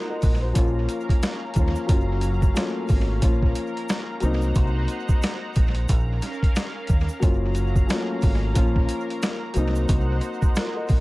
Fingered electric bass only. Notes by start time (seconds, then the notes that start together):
0.23 A#1
0.56 A#1
1.56 D#2
1.89 F#1
2.90 G#1
3.23 A#1
4.23 C2
4.56 C2
5.57 A#1
5.89 A#1
6.90 D#2
7.23 F#1
8.23 G#1
8.56 A#1
9.56 C2
9.89 C2
10.90 A#1